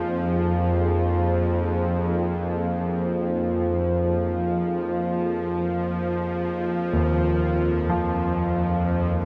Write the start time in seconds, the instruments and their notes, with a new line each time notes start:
Already playing: synth drone F2 F3, ambient pad F3 A#3 D#4 G#4, grand piano A#4
6.93 grand piano D#2
7.89 grand piano F3
9.17 synth texture F5